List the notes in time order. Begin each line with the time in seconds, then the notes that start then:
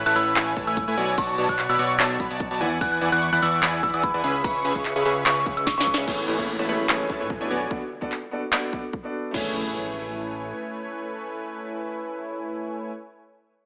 0.06 A1 A3 E4 B4 C#5 A5 F#6
0.16 A1 A3 E4 B4 C#5 B5 E6, closed hi-hat
0.36 A1 A3 E4 B4 C#5 G#5, clap, closed hi-hat
0.57 A1 A3 E4 B4 C#5 A5, kick, closed hi-hat
0.67 A1 A3 E4 B4 C#5 G#5 E6, closed hi-hat
0.77 kick, closed hi-hat
0.88 A2 A3 E4 B4 C#5 G#5
0.97 B1 B3 F#4 C#5 D5 G#5, closed hi-hat
1.18 B1 B3 F#4 C#5 D5 A5 C#6, kick, closed hi-hat, ride
1.38 B1 B3 F#4 C#5 D5 A5, closed hi-hat
1.49 B1 F#4 C#5 D5 C#6 F#6, kick, closed hi-hat
1.59 clap, closed hi-hat
1.69 B1 B3 F#4 C#5 D5 B5 E6
1.79 B1 B3 F#4 C#5 D5 C#6, closed hi-hat
1.99 B1 B3 F#4 C#5 D5 A5, clap, closed hi-hat
2.20 B1 B3 F#4 C#5 D5 B5, kick, closed hi-hat
2.31 B1 B3 F#4 C#5 D5 A5, closed hi-hat
2.40 kick, closed hi-hat
2.51 B1 B3 F#4 C#5 D5 A5
2.61 E2 E3 E4 D5 F#5 G#5, closed hi-hat
2.81 E2 E3 E4 D5 F#5 G#5 F#6, kick, closed hi-hat, ride
2.92 F#6
3.01 E2 E3 E4 D5 F#5 G#5, closed hi-hat
3.12 E2 E3 E4 D5 F#5 C#6 F#6, closed hi-hat
3.22 closed hi-hat
3.33 E2 E3 E4 D5 F#5 B5 F#6
3.42 E2 E3 E4 D5 F#5 C#6 E6, closed hi-hat
3.63 E2 E3 E4 D5 F#5 G#5, clap, closed hi-hat
3.83 E2 E3 E4 D5 F#5 B5 E6, kick, closed hi-hat
3.94 E2 E3 E4 D5 F#5 G#5 E6, closed hi-hat
4.04 B5, kick, closed hi-hat
4.14 E2 E3 E4 D5 F#5 G#5
4.24 C#2 C#4 G#4 B4 E5 B5, closed hi-hat
4.44 C#2 C#4 G#4 B4 E5 B5 C#6, kick, closed hi-hat, ride
4.65 C#2 C#4 G#4 B4 E5 C#6, closed hi-hat
4.75 C#2 C#4 G#4 B4 E5 C#6, kick, closed hi-hat
4.85 clap, closed hi-hat
4.96 C#2 C#4 G#4 B4 E5 C#6
5.05 C#2 C#4 G#4 B4 E5 C#6, closed hi-hat
5.26 C#2 C#4 G#4 B4 E5 C#6, clap, closed hi-hat
5.46 C#2 C#4 G#4 B4 E5 C#6, kick, closed hi-hat
5.57 E6, closed hi-hat
5.67 C#6, kick, snare, closed hi-hat
5.77 C#2 C#4 G#4 B4 E5 C#6, snare
5.87 C#6, kick, closed hi-hat
5.94 C#2 C#4 G#4 B4 E5 C#6, snare
6.07 A1 A3 C#4 E4 G#4 B4 C#5 G#5, kick, crash, downlifter
6.28 A1 A3 E4 B4 C#5 G#5
6.38 A1 A3 C#4 E4 G#4 B4 C#5 B5, kick
6.59 A1 A3 E4 B4 C#5 A5
6.68 A1 A3 C#4 E4 G#4 B4 C#5 B5
6.88 A1 A3 C#4 E4 G#4 B4 C#5 G#5, finger snap, clap
7.09 A1 A3 C#4 E4 G#4 B4 C#5 A5, kick
7.20 A2 A3 E4 B4 C#5 G#5
7.30 kick
7.40 A1 A3 B3 D4 E4 F#4 A4 B4 C#5 D5 G#5
7.50 B1 B3 F#4 C#5 D5 G#5
7.70 B3 D4 F#4 A4 D5, kick
8.01 B3 D4 F#4 A4 D5, kick
8.12 clap
8.31 B3 D4 F#4 A4 D5
8.51 B3 D4 F#4 A4 D5, finger snap, clap
8.72 B3 D4 F#4 A4 D5, kick
8.93 kick
9.03 B3 D4 F#4 A4 D5
9.31 A1 A3 C#4 E4 B4 C#5 G#5, kick, crash, impact
9.36 G#4 C#5